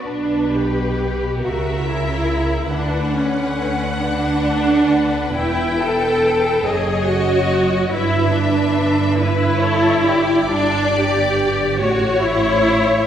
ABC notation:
X:1
M:6/8
L:1/8
Q:3/8=47
K:Edor
V:1 name="Violin section"
z3 e3 | f6 | g3 ^d3 | e3 B c d- |
[K:Glyd] d3 c3 |]
V:2 name="Violin section"
B3 ^A3 | B3 B3- | B3 c3 | B3 B A G |
[K:Glyd] d3 c3 |]
V:3 name="Viola section"
D G2 F E2 | D C2 D3 | E A2 ^G F2 | E D2 E3 |
[K:Glyd] D G2 F E2 |]
V:4 name="Cello section" clef=bass
B,,3 C,3 | D,6 | E,,3 F,,3 | G,,6 |
[K:Glyd] G,,3 A,,3 |]
V:5 name="Double bass section" clef=bass
B,,,3 C,,3 | D,,6 | E,,,3 F,,,3 | G,,,6 |
[K:Glyd] G,,,3 A,,,3 |]